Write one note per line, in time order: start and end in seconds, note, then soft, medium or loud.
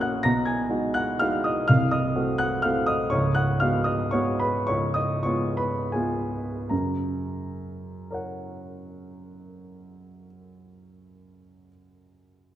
0.00 0.27 A#1 medium
0.00 0.28 A#2 soft
0.00 0.27 A#3 soft
0.00 0.28 C#4 soft
0.00 0.28 F#4 soft
0.00 0.28 D#5 medium
0.00 0.28 F5 soft
0.00 0.03 F#5 medium
0.00 0.23 F#5 medium
0.00 0.27 G#5 medium
0.00 0.27 D#6 medium
0.00 0.27 F6 medium
0.00 0.28 F#6 medium
0.00 0.27 G#6 medium
0.23 0.69 B1 medium
0.23 0.69 B2 medium
0.23 0.45 A#5 medium
0.23 0.46 A#6 medium
0.46 0.92 G#5 soft
0.46 0.94 G#6 medium
0.69 1.16 G#3 soft
0.69 1.16 D#4 soft
0.69 1.16 F#4 soft
0.94 1.19 F#5 medium
0.94 1.20 F#6 medium
1.19 1.64 G#3 soft
1.19 1.65 D#4 soft
1.19 1.65 F#4 soft
1.19 1.43 F5 medium
1.19 1.44 F6 medium
1.44 1.67 D#5 medium
1.44 1.68 D#6 medium
1.68 2.15 C1 medium
1.68 2.15 C2 medium
1.68 1.90 F5 medium
1.68 1.91 F6 medium
1.91 2.37 D#5 medium
1.91 2.40 D#6 medium
2.16 2.61 A3 soft
2.16 2.61 C4 soft
2.16 2.61 F#4 soft
2.38 2.63 F#5 medium
2.38 2.64 F#6 medium
2.62 3.09 A3 soft
2.62 3.09 C4 soft
2.62 3.10 F#4 soft
2.62 2.87 F5 medium
2.62 2.88 F6 medium
2.87 3.11 D#5 medium
2.87 3.12 D#6 medium
3.10 3.60 C#1 medium
3.10 3.60 C#2 medium
3.10 3.35 C#5 medium
3.10 3.36 C#6 medium
3.35 3.60 F#5 medium
3.35 3.61 F#6 medium
3.60 4.09 G#3 soft
3.60 4.10 B3 soft
3.60 4.10 F#4 soft
3.60 3.85 F5 medium
3.60 3.86 F6 medium
3.84 4.11 D#5 medium
3.84 4.12 D#6 medium
4.11 4.64 G#3 soft
4.11 4.64 B3 soft
4.11 4.64 F#4 soft
4.11 4.38 C#5 medium
4.11 4.39 C#6 medium
4.40 4.66 B4 medium
4.40 4.67 B5 medium
4.67 5.24 C#1 medium
4.67 5.25 C#2 medium
4.67 4.94 C#5 medium
4.67 4.95 C#6 medium
4.94 5.24 D#5 medium
4.94 5.25 D#6 medium
5.23 5.90 G#3 soft
5.23 5.91 B3 soft
5.23 5.91 F4 soft
5.23 5.55 C#5 medium
5.23 5.57 C#6 medium
5.57 5.92 B4 soft
5.57 5.94 B5 medium
5.92 6.66 G#3 soft
5.92 6.67 B3 soft
5.92 6.67 F4 soft
5.92 6.66 G#4 soft
5.92 6.70 G#5 medium
6.69 10.26 F#2 soft
6.69 10.27 C#3 soft
6.69 10.25 A#5 soft
8.11 11.66 A#4 soft
8.11 11.67 C#5 soft
8.11 11.70 F#5 soft